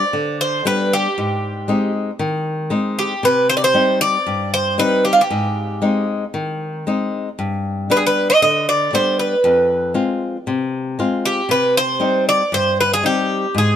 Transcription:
Already playing: D5
0.13 D3
0.41 C5
0.65 G3 B3 D4 B4
0.93 G4
1.18 G#2
1.68 G#3 C4 D#4
2.19 D#3
2.70 G#3 C4 D#4
2.99 G4
3.23 C3 B4
3.49 C5
3.57 D5
3.64 C5
3.74 G3 C4 D#4
4.01 D5
4.27 G2
4.54 C5
4.78 G3 C4 D#4 B4
5.05 G4
5.13 F4
5.21 G4
5.30 G#2
5.82 G#3 C4 D#4
6.34 D#3
6.87 G#3 C4 D#4
7.39 G2
7.90 G3 B3 D4 B4
7.97 G#4
8.07 B4
8.30 D#5
8.42 D3 D#5
8.69 D5
8.93 G3 B3 D4 C5
9.19 B4
9.44 F2
9.94 G#3 C4 F4
10.47 C3
10.99 G#3 C4 F4
11.26 G4
11.49 C3 B4
11.77 C5
12.00 G3 C4 D#4
12.29 D5
12.52 G2 C5
12.81 B4
12.93 G#4
13.03 G3 C4 D#4 G4
13.55 G#2 G#4

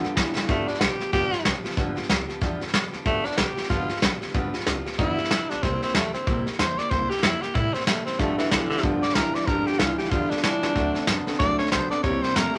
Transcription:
Already playing: G2 D3 B3
0.03 F3 B3 F4 G4, muted upright bass stroke, snare
0.16 G2 E3 F3 B3 F4 G4, kick, snare, hi-hat pedal
0.35 E2 G2 E3 F3 B3 F4 G4, snare
0.48 G1 G2 D3 F3 A3 B3 F4 G4, kick, snare
0.68 F3 B3 D4 F4 G4, muted upright bass stroke, snare
0.75 snare
0.80 B1 F3 B3 F4 G4, snare, hi-hat pedal
0.99 F3 B3 F4 G4, muted upright bass stroke, snare
1.12 F1 G2 D3 F3 B3 F4 G4, kick, snare
1.32 F3 B3 F4 G4, muted upright bass stroke, snare
1.39 snare
1.45 B1 F3 B3 G4, snare, hi-hat pedal
1.64 F3 B3 F4 G4, muted upright bass stroke, snare
1.71 snare
1.77 G1 G2 D3 F3 B3 F4 G4, kick, snare
1.96 F3 B3 F4 G4, muted upright bass stroke, snare
2.03 snare
2.08 C2 F3 B3 F4 G4, snare, hi-hat pedal
2.28 F3 B3 F4 G4, snare
2.41 E2 G2 D3 F3 B3 F4 G4, kick, snare
2.60 F3 B3 F4 G4, muted upright bass stroke, snare
2.67 snare
2.73 F2 F3 B3 F4 G4, snare, hi-hat pedal
2.92 E2 F3 B3 F4 G4, snare
3.05 G1 G2 D3 F3 A3 B3 F4 G4, kick, snare
3.24 F3 B3 D4 F4 G4, muted upright bass stroke, snare
3.31 snare
3.37 B1 F3 B3 F4 G4, snare, hi-hat pedal
3.56 F3 B3 F4 G4, muted upright bass stroke, snare
3.63 snare
3.69 F1 G2 D3 F3 B3 F4 G4, kick, snare
3.88 F3 B3 F4 G4, snare
3.96 snare
4.01 B1 F3 B3 G4, snare, hi-hat pedal
4.20 F3 B3 F4 G4, muted upright bass stroke, snare
4.28 snare
4.34 G1 G2 D3 F3 B3 F4 G4, kick, snare
4.53 F3 B3 F4 G4, muted upright bass stroke, snare
4.60 snare
4.66 C2 F3 B3 F4 G4, snare, hi-hat pedal
4.85 F3 B3 F4 G4, snare
4.92 snare
4.98 E2 G2 D3 F3 B3 E4 F4 G4, kick, snare
5.17 F3 B3 F4 G4, snare
5.24 snare
5.30 F2 F3 B3 F4 G4, snare, hi-hat pedal
5.49 B1 F3 B3 D4 F4 G4, snare
5.63 C2 C3 G3 A#3 C4 E4 G4, kick, snare
5.82 A#3 C4 E4 G4, snare
5.89 snare
5.94 E2 G3 A3 A#3 E4 G4, snare, hi-hat pedal
6.14 A#3 C4 E4 G4, muted upright bass stroke, snare
6.27 A#1 C3 G3 A#3 E4 G4, kick, snare
6.46 A#3 E4 G4, snare
6.53 snare
6.59 E2 G3 A#3 E4 G4 C5, snare, hi-hat pedal
6.78 A#3 E4 G4 D5, muted upright bass stroke, snare
6.90 C2 C3 G3 A#3 E4 G4 C5, kick, snare
7.10 A#3 E4 G4, muted upright bass stroke, snare
7.17 snare
7.23 F2 G3 A#3 E4 G4, snare, hi-hat pedal
7.42 A#3 E4 G4, muted upright bass stroke, snare
7.55 A2 C3 G3 A#3 E4 G4, kick, snare
7.74 A#3 C4 E4 G4, snare
7.81 snare
7.87 A#2 G3 A3 A#3 E4 G4, snare, hi-hat pedal
8.06 A1 A#3 C4 E4 G4, snare
8.13 snare
8.19 G1 G2 D3 F3 A3 B3 F4 G4, kick, snare
8.38 E3 F3 B3 F4 G4, muted upright bass stroke, snare
8.45 snare
8.50 B1 G2 D3 E3 F3 B3 F4 G4, snare, hi-hat pedal
8.70 G2 D3 E3 F3 B3 F4 G4, muted upright bass stroke, snare
8.77 snare
8.83 F1 G2 D3 F3 B3 F4 G4, kick, snare
9.02 F3 B3 F4 G4 D5, muted upright bass stroke, snare
9.09 snare
9.15 B1 G2 E3 F3 B3 F4 G4 A#4, snare, hi-hat pedal
9.34 G2 E3 F3 B3 F4 G4 D5, muted upright bass stroke, snare
9.41 snare
9.47 G1 G2 D3 F3 B3 F4 G4 A#4, kick, snare
9.66 F3 B3 F4 G4, muted upright bass stroke, snare
9.73 snare
9.79 C2 G2 E3 F3 B3 F4 G4, snare, hi-hat pedal
9.98 G2 E3 F3 B3 F4 G4, snare
10.05 snare
10.10 E2 G2 D3 F3 B3 F4 G4, kick, snare
10.30 F3 B3 D4 F4 G4, muted upright bass stroke, snare
10.37 snare
10.43 F2 G2 E3 F3 B3 D4 F4 G4, snare, hi-hat pedal
10.62 E2 G2 E3 F3 B3 F4 G4, snare
10.75 D2 D3 F#3 A3 C4 D4 A4, kick, snare
10.94 C4 D4 A4, snare
11.01 snare
11.07 F#2 D3 F#3 B3 C4 D4 A4, snare, hi-hat pedal
11.27 D3 B3 C4 D4 A4, muted upright bass stroke, snare
11.34 snare
11.39 C2 D3 F#3 A3 C4 D4 A4 D5, kick, snare
11.58 C4 D4 A4 C#5, snare
11.66 snare
11.71 B1 D3 F#3 B3 C4 D4 A4 C5, snare, hi-hat pedal
11.90 D3 B3 C4 D4 A4 D5, muted upright bass stroke, snare
12.03 C2 C3 G3 A#3 E4 G4 C#5, kick, snare
12.22 A#3 E4 G4 C5, snare
12.30 snare
12.35 F2 C3 G3 A3 A#3 E4 G4 A#4, snare, hi-hat pedal
12.54 C3 G4

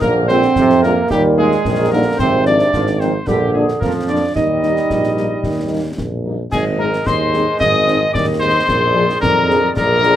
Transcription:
0.01 A#1 D3 A#3 A#4, concert bass drum, snare
0.28 G#3 C4 D4 F4 C5, snare
0.42 snare
0.56 F2 C3, concert bass drum, snare
0.70 snare
0.82 G#3 A#3 D4 F4 A#4, snare
1.09 D#2 A#2 G3 G4, concert bass drum, snare
1.37 G3 G#3 A#3 D#4 G#4
1.51 snare
1.64 A#1 D#3, concert bass drum, snare
1.91 D3 G3 A#3 D#4 A#4
2.17 G#1 C3 C4 C5, concert bass drum, snare, crash
2.45 F3 C4 D4 D5, snare
2.59 snare
2.72 G#1 F3, concert bass drum, snare
2.87 snare
2.99 D#3 F3 C4 C5, snare
3.26 A#1 D3 G3 G4, concert bass drum, snare
3.53 F3 G#3 A#3 D4 G#4
3.69 snare
3.80 F2 F3 A#3 A#4, concert bass drum, snare
4.08 F3 A#3 D4 D5
4.35 D#2 G3 D#4 D#5, concert bass drum, snare
4.62 G3 A#3 D#4, snare
4.76 snare
4.90 A#1, concert bass drum, snare
5.03 snare
5.16 G3 A#3 D#4, snare
5.44 D#2, concert bass drum, snare
5.70 G3 A#3 D#4
5.98 A#1, concert bass drum, snare
6.25 G3 A#3 D#4
6.51 G#1 D#3 G#3 G#4 D#5 G#5, concert bass drum, snare, crash
6.78 G#3 C4 D#4 A#4 A#5
6.93 snare
7.06 D#2 G#4 C5 D#5 C6, concert bass drum, snare
7.33 G#3 C4 D#4, snare
7.59 G#1 G#4 D#5 D#6, concert bass drum, snare
7.87 G#3 C4 D#4, snare
8.13 D#2 D5 D6, concert bass drum, snare
8.40 G#3 C4 D#4 C5 C6
8.67 A#1 G#3 G#4 D5, concert bass drum, snare
8.95 F3 D4 G#4
9.10 snare
9.21 F2 G#4 A#4 D5 A#5, concert bass drum, snare
9.49 F3 D4 G#4, snare
9.76 A#1 D3 G#4 A#4 D5 A#5, concert bass drum, snare
10.03 F3 D4 G#4, snare

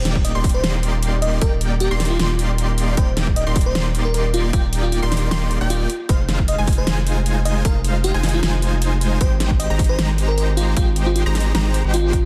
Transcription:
Already playing: D#1 A#3 D#4 G4 D5 G5
0.05 snare, closed hi-hat
0.16 kick
0.25 D#5, closed hi-hat
0.35 D#1 A#3 D#4 G4 D5 C6
0.44 kick, open hi-hat
0.49 closed hi-hat
0.54 C5
0.63 D#1 A#3 D#4 G4 D5 C6, snare, closed hi-hat
0.83 closed hi-hat
1.03 closed hi-hat
1.22 D#5, closed hi-hat
1.41 D#1 D#4 A#4 D5 G5, kick, closed hi-hat
1.61 closed hi-hat
1.80 G4, closed hi-hat
1.91 D#1 A#3 D#4 G4 D5 C6
2.00 snare, open hi-hat
2.05 closed hi-hat
2.10 F4
2.19 D#1 A#3 D#4 G4 D5 C6, snare, closed hi-hat
2.39 closed hi-hat
2.58 closed hi-hat
2.78 closed hi-hat
2.97 D#1 G4 C5 G5, kick, closed hi-hat
3.17 snare, closed hi-hat
3.27 kick
3.36 D#5, closed hi-hat
3.47 D#1 A#3 D#4 G4 D5 C6
3.56 kick, open hi-hat
3.61 closed hi-hat
3.66 C5
3.75 D#1 A#3 D#4 G4 D5 C6, snare, closed hi-hat
3.95 closed hi-hat
4.05 A#4
4.14 A#4, closed hi-hat
4.34 F4, closed hi-hat
4.53 D#1 A#3 D#4 F4 G4 D5 G5, kick, closed hi-hat
4.73 closed hi-hat
4.83 F4
4.92 F4, closed hi-hat
5.02 D#1 A#3 D#4 G4 D5 C6
5.12 snare, open hi-hat
5.17 closed hi-hat
5.31 D#1 A#3 D#4 G4 D5 C6, snare, closed hi-hat
5.51 closed hi-hat
5.61 D#1 A#3 D#4 G4 D5 G5
5.70 F4, closed hi-hat
5.90 closed hi-hat
6.09 F1 G#3 D#4 F4 C5 F5, kick, closed hi-hat
6.29 snare, closed hi-hat
6.39 kick
6.48 D#5, closed hi-hat
6.58 F1 G#3 D#4 F4 C5 G#5
6.67 kick, open hi-hat
6.73 closed hi-hat
6.78 C5
6.87 F1 G#3 D#4 F4 C5 G#5, snare, closed hi-hat
7.07 closed hi-hat
7.26 closed hi-hat
7.45 D#5, closed hi-hat
7.65 F1 G#3 D#4 F4 A#4 C5 F5, kick, closed hi-hat
7.84 closed hi-hat
8.04 G4, closed hi-hat
8.14 F1 G#3 D#4 F4 C5 G#5
8.23 snare, open hi-hat
8.29 closed hi-hat
8.34 F4
8.43 F1 G#3 D#4 F4 C5 G#5, snare, closed hi-hat
8.62 closed hi-hat
8.82 closed hi-hat
9.01 closed hi-hat
9.21 G#1 C5 G5, kick, closed hi-hat
9.40 snare, closed hi-hat
9.51 kick
9.60 D#5, closed hi-hat
9.70 G#1 G#3 D#4 G4 C5 A#5
9.79 kick, open hi-hat
9.84 closed hi-hat
9.89 C5
9.99 G#1 G#3 D#4 G4 C5 A#5, snare, closed hi-hat
10.18 closed hi-hat
10.28 A#4
10.37 A#4, closed hi-hat
10.57 F4, closed hi-hat
10.76 G#1 F4 G5, kick, closed hi-hat
10.96 closed hi-hat
11.06 F4
11.16 F4, closed hi-hat
11.26 G#1 G#3 D#4 G4 C5 A#5
11.35 snare, open hi-hat
11.40 closed hi-hat
11.55 G#1 G#3 D#4 G4 C5 A#5, snare, closed hi-hat
11.74 closed hi-hat
11.84 G#1 G#3 D#4 G4 C5 G5
11.94 F4, closed hi-hat
12.13 kick, closed hi-hat

